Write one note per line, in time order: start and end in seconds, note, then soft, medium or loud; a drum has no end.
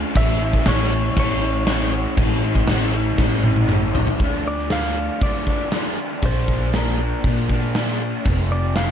0.00 0.14 D3 loud
0.00 0.17 A3 loud
0.00 0.15 D4 loud
0.00 0.15 F4 loud
0.15 0.59 A1 loud
0.15 1.67 A2 medium
0.15 0.67 E3 medium
0.15 0.42 A3 loud
0.15 0.42 C#4 loud
0.15 0.40 E4 loud
0.15 0.68 E5 loud
0.15 kick loud
0.15 crash medium
0.41 0.67 A3 medium
0.41 0.68 C#4 medium
0.41 0.69 E4 medium
0.53 kick medium
0.66 1.10 A1 loud
0.66 1.68 E3 medium
0.66 0.93 A3 medium
0.66 0.92 C#4 medium
0.66 0.91 E4 medium
0.66 1.19 C#5 loud
0.66 snare loud
0.66 crash medium
0.91 1.43 A3 medium
0.91 1.42 C#4 medium
0.91 1.40 E4 medium
1.16 2.04 A1 medium
1.16 3.67 C#5 loud
1.16 kick loud
1.16 crash medium
1.41 1.69 A3 medium
1.41 1.68 C#4 medium
1.41 1.69 E4 medium
1.67 2.17 A2 medium
1.67 2.17 E3 loud
1.67 2.18 A3 loud
1.67 2.18 C#4 loud
1.67 2.19 E4 loud
1.67 snare loud
1.67 crash medium
2.17 2.61 A1 loud
2.17 2.68 A2 medium
2.17 2.67 E3 loud
2.17 2.44 A3 medium
2.17 2.43 C#4 loud
2.17 2.42 E4 loud
2.17 kick loud
2.17 crash medium
2.43 2.68 A3 medium
2.43 2.68 C#4 medium
2.43 2.69 E4 medium
2.55 kick medium
2.67 3.12 A1 loud
2.67 3.19 E3 medium
2.67 2.96 A3 medium
2.67 2.95 C#4 medium
2.67 2.94 E4 medium
2.67 snare loud
2.67 crash medium
2.95 3.46 A3 medium
2.95 3.45 C#4 medium
2.95 3.44 E4 medium
3.18 4.06 A1 loud
3.18 kick loud
3.18 snare medium
3.43 3.69 A3 medium
3.43 3.71 C#4 medium
3.43 3.71 E4 medium
3.43 high tom medium
3.56 high tom medium
3.69 4.19 A2 medium
3.69 4.19 E3 loud
3.69 4.19 A3 loud
3.69 4.20 C#4 loud
3.69 4.20 E4 loud
3.69 mid tom medium
3.95 floor tom loud
4.07 floor tom loud
4.20 5.08 D2 medium
4.20 4.69 D3 medium
4.20 4.71 F3 medium
4.20 4.71 A3 medium
4.20 4.72 D4 loud
4.20 kick loud
4.20 open hi-hat medium
4.48 4.72 D5 medium
4.58 snare soft
4.70 5.21 D3 medium
4.70 4.98 F3 medium
4.70 4.96 A3 medium
4.70 4.95 D4 medium
4.70 5.22 F5 loud
4.70 snare loud
4.70 open hi-hat medium
4.96 5.22 F3 medium
4.96 5.22 A3 medium
4.96 5.22 D4 medium
5.21 6.09 D3 medium
5.21 5.70 D3 medium
5.21 5.49 F3 medium
5.21 5.48 A3 medium
5.21 5.46 D4 medium
5.21 6.27 D5 loud
5.21 kick loud
5.21 open hi-hat medium
5.47 5.72 F3 medium
5.47 5.72 A3 medium
5.47 5.72 D4 medium
5.47 kick medium
5.71 6.21 D3 medium
5.71 6.23 F3 medium
5.71 6.24 A3 medium
5.71 6.22 D4 medium
5.71 snare loud
5.71 open hi-hat medium
6.22 7.11 A#1 medium
6.22 6.73 A#2 medium
6.22 6.75 F3 medium
6.22 6.74 A#3 loud
6.22 6.75 D4 loud
6.22 6.76 C5 medium
6.22 kick loud
6.22 open hi-hat medium
6.48 kick medium
6.74 7.24 A#2 medium
6.74 7.02 F3 medium
6.74 7.00 A#3 medium
6.74 6.98 D4 medium
6.74 7.22 A#4 medium
6.74 snare loud
6.74 open hi-hat medium
7.00 7.24 F3 medium
7.00 7.25 A#3 medium
7.00 7.25 D4 medium
7.24 8.12 A#2 medium
7.24 7.74 A#2 medium
7.24 7.51 F3 medium
7.24 7.51 A#3 medium
7.24 7.49 D4 medium
7.24 kick loud
7.24 open hi-hat medium
7.49 7.75 F3 medium
7.49 7.75 A#3 medium
7.49 7.76 D4 medium
7.49 kick medium
7.75 8.25 A#2 medium
7.75 8.25 F3 medium
7.75 8.25 A#3 medium
7.75 8.25 D4 medium
7.75 snare loud
7.75 open hi-hat medium
8.25 8.91 F1 loud
8.25 8.91 F2 medium
8.25 8.76 C3 medium
8.25 8.77 F3 medium
8.25 8.77 A3 medium
8.25 8.79 C4 medium
8.25 kick loud
8.25 open hi-hat medium
8.52 8.76 D5 medium
8.76 8.91 C3 medium
8.76 8.91 F3 medium
8.76 8.91 A3 medium
8.76 8.91 C4 medium
8.76 8.91 F5 loud
8.76 snare loud
8.76 open hi-hat medium